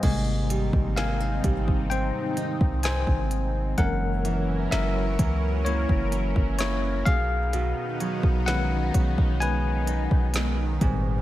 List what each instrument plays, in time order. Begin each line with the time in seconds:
Already playing: nylon-string guitar G3 C4 D#4, tine electric piano G3 D#5 G#5
0.03 808-style bass G#1, nylon-string guitar G#2, tine electric piano C3 G#3 A#3, analog synth pad D#3 C4 D#4, kick, closed hi-hat, crash
0.50 nylon-string guitar G3, closed hi-hat
0.73 808-style bass G#1, kick
0.97 nylon-string guitar A#3, tine electric piano F5 G#5, snare, closed hi-hat
1.20 nylon-string guitar C4
1.44 808-style bass G#1, nylon-string guitar G3, kick, closed hi-hat
1.68 kick
1.90 nylon-string guitar C4, tine electric piano C5 G5, closed hi-hat
2.37 nylon-string guitar D#4, closed hi-hat
2.61 808-style bass C2, kick
2.83 nylon-string guitar C4, tine electric piano C5 G#5, snare, closed hi-hat
3.07 808-style bass G#1, kick
3.31 closed hi-hat
3.78 808-style bass F#1, nylon-string guitar F#2, tine electric piano E3 G#3 A#3 A#4 F#5, analog synth pad F#3 C#4 E4 A#4, kick, closed hi-hat
4.25 nylon-string guitar E3, closed hi-hat
4.71 808-style bass F#1, nylon-string guitar A#3, tine electric piano A#4 E5, snare, closed hi-hat
5.19 808-style bass C#2, nylon-string guitar E3, kick, closed hi-hat
5.65 nylon-string guitar A#3, tine electric piano E4 C#5, closed hi-hat
5.89 808-style bass F#1, kick
6.12 nylon-string guitar C#4, closed hi-hat
6.36 808-style bass F#1, kick
6.59 nylon-string guitar A#3, tine electric piano E4 C#5, snare, closed hi-hat
7.05 808-style bass B1, nylon-string guitar B2, analog synth pad D#3 B3 D#4, tine electric piano G#4 F5, kick, closed hi-hat
7.53 nylon-string guitar B2, closed hi-hat
8.00 nylon-string guitar F#3, closed hi-hat
8.23 808-style bass B1, kick
8.46 tine electric piano D#3 G#3 C#4 B4 F#5, nylon-string guitar G#3, snare, closed hi-hat
8.94 808-style bass B1, nylon-string guitar F#3, kick, closed hi-hat
9.18 808-style bass B1, kick
9.40 nylon-string guitar G#3, tine electric piano B4 G#5, closed hi-hat
9.87 nylon-string guitar D#4, closed hi-hat
10.11 808-style bass B1, kick
10.34 nylon-string guitar G#3, snare, closed hi-hat
10.81 808-style bass G#1, nylon-string guitar G#2, tine electric piano A#2 G3 C4, analog synth pad G3 C4, kick, closed hi-hat